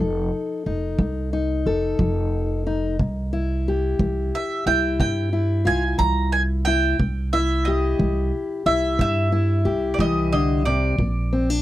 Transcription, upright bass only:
0.00 F1
0.66 F1
0.99 C2
1.66 F1
1.99 F1
3.00 C2
3.99 C2
4.66 C2
5.00 G2
5.66 C2
5.99 C2
7.00 C2
7.99 C2
8.66 C2
8.99 G2
9.65 C2
9.99 C2
10.98 A#1

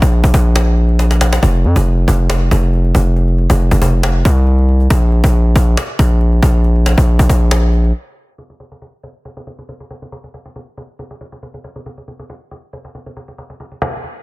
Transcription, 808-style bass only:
0.02 A#1
0.24 A#1
0.34 A#1
1.43 F1
1.64 F2
1.76 F1
2.08 F1
2.51 F1
2.95 F1
3.50 F1
3.71 F1
4.25 C2
4.90 A#1
5.24 A#1
5.56 A#1
5.99 A#1
6.43 A#1
6.98 A#1
7.19 A#1
7.29 A#1

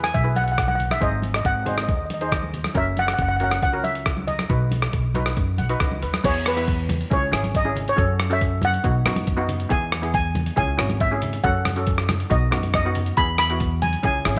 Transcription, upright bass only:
0.15 B1
1.01 G#1
1.45 G#1
1.88 D#2
2.75 F#1
3.18 F#1
3.62 C#2
4.50 B1
4.93 B1
5.37 F#2
5.59 B1
5.80 C#2
6.03 D#2
6.24 E2
7.11 C#2
7.32 G#1
7.98 F#2
8.85 B1
9.05 F#2
9.71 E2
10.57 C#2
10.79 G#1
11.44 F#2
12.31 B1
12.52 F#2
13.17 E2
14.04 C#2
14.26 G#1

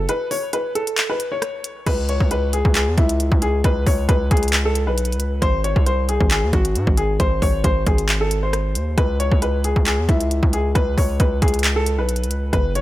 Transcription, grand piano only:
0.09 B4
0.31 C#5
0.53 B4
0.75 A4
1.10 B4
1.32 C#5
1.87 B4
2.09 C#5
2.31 B4
2.53 G#4
2.75 G#4
2.98 E4
3.42 G#4
3.65 B4
3.86 C#5
4.09 B4
4.31 G#4
4.65 A4
4.87 B4
5.42 C5
5.64 C#5
5.86 C5
6.09 G#4
6.31 G#4
6.53 F#4
6.97 G#4
7.20 C5
7.42 C#5
7.64 C5
7.87 G#4
8.21 A4
8.43 C5
8.98 B4
9.20 C#5
9.42 B4
9.64 G#4
9.87 G#4
10.09 E4
10.53 G#4
10.75 B4
10.97 C#5
11.20 B4
11.42 G#4
11.76 A4
11.99 B4
12.53 B4
12.75 C#5

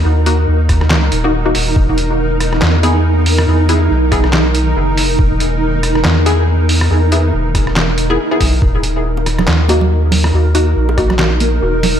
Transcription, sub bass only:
0.05 D#2
0.48 D#2
0.92 D2
1.12 D#1
1.55 D#1
1.76 E1
2.62 E2
3.47 E2
3.90 B1
4.76 F#1
5.19 E1
6.05 E2
6.91 E2
7.33 E1
8.40 B1
8.62 D#1
9.48 D#2
10.33 D#2
10.76 A#1
11.62 E1

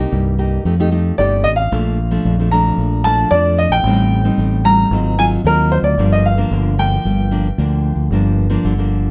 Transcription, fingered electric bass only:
0.12 C2
0.65 F2
1.19 G1
1.44 A1
1.72 A#1
2.25 A#1
2.78 A#1
3.31 F2
3.69 A#1
3.83 A1
4.38 A1
4.91 G#1
5.44 D#2
5.83 D2
5.98 G1
6.51 G1
7.05 G1
7.58 D2
7.96 D2
8.10 G1
8.65 G1

